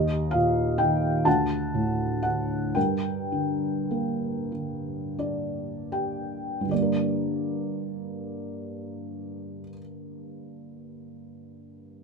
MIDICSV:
0, 0, Header, 1, 2, 480
1, 0, Start_track
1, 0, Key_signature, -2, "minor"
1, 0, Tempo, 927357
1, 900, Tempo, 1018676
1, 1380, Tempo, 1136364
1, 1381, Time_signature, 6, 3, 24, 8
1, 1860, Tempo, 1295896
1, 2340, Tempo, 1522843
1, 2820, Tempo, 1604278
1, 3780, Tempo, 1639344
1, 4400, End_track
2, 0, Start_track
2, 0, Title_t, "Felt piano"
2, 0, Program_c, 0, 0
2, 0, Note_on_c, 0, 39, 56
2, 0, Note_on_c, 0, 67, 47
2, 0, Note_on_c, 0, 75, 64
2, 29, Control_c, 0, 64, 127
2, 160, Note_on_c, 0, 77, 70
2, 176, Note_on_c, 0, 46, 43
2, 178, Note_off_c, 0, 75, 0
2, 404, Note_on_c, 0, 79, 74
2, 413, Note_off_c, 0, 77, 0
2, 414, Note_on_c, 0, 51, 41
2, 632, Note_off_c, 0, 39, 0
2, 633, Note_off_c, 0, 67, 0
2, 639, Note_off_c, 0, 46, 0
2, 646, Note_off_c, 0, 51, 0
2, 648, Note_on_c, 0, 81, 73
2, 651, Note_on_c, 0, 38, 49
2, 656, Note_off_c, 0, 79, 0
2, 657, Note_on_c, 0, 78, 52
2, 661, Control_c, 0, 64, 0
2, 746, Control_c, 0, 64, 127
2, 902, Note_on_c, 0, 45, 37
2, 1122, Note_off_c, 0, 78, 0
2, 1129, Note_on_c, 0, 78, 59
2, 1141, Note_on_c, 0, 50, 35
2, 1146, Note_off_c, 0, 81, 0
2, 1361, Note_off_c, 0, 38, 0
2, 1367, Note_off_c, 0, 45, 0
2, 1375, Note_on_c, 0, 79, 55
2, 1376, Note_off_c, 0, 50, 0
2, 1381, Note_on_c, 0, 70, 37
2, 1384, Note_on_c, 0, 43, 47
2, 1385, Note_off_c, 0, 78, 0
2, 1387, Control_c, 0, 64, 0
2, 1462, Control_c, 0, 64, 127
2, 1618, Note_on_c, 0, 50, 35
2, 1865, Note_on_c, 0, 58, 32
2, 2086, Note_off_c, 0, 50, 0
2, 2092, Note_on_c, 0, 50, 31
2, 2323, Note_off_c, 0, 79, 0
2, 2326, Note_off_c, 0, 70, 0
2, 2338, Note_on_c, 0, 62, 31
2, 2340, Note_on_c, 0, 74, 39
2, 2557, Note_off_c, 0, 74, 0
2, 2570, Note_on_c, 0, 67, 31
2, 2571, Note_on_c, 0, 79, 38
2, 2782, Note_off_c, 0, 43, 0
2, 2787, Note_on_c, 0, 43, 33
2, 2795, Note_off_c, 0, 50, 0
2, 2800, Note_on_c, 0, 50, 30
2, 2807, Note_off_c, 0, 62, 0
2, 2808, Note_off_c, 0, 79, 0
2, 2810, Note_off_c, 0, 58, 0
2, 2813, Note_off_c, 0, 67, 0
2, 2814, Note_on_c, 0, 55, 31
2, 2820, Note_on_c, 0, 74, 44
2, 2825, Control_c, 0, 64, 0
2, 2826, Note_on_c, 0, 58, 30
2, 2839, Note_on_c, 0, 62, 31
2, 2852, Note_on_c, 0, 70, 37
2, 2877, Control_c, 0, 64, 127
2, 3681, Note_off_c, 0, 43, 0
2, 3693, Note_off_c, 0, 50, 0
2, 3706, Note_off_c, 0, 55, 0
2, 3712, Note_off_c, 0, 74, 0
2, 3718, Note_off_c, 0, 58, 0
2, 3731, Note_off_c, 0, 62, 0
2, 3744, Note_off_c, 0, 70, 0
2, 4400, End_track
0, 0, End_of_file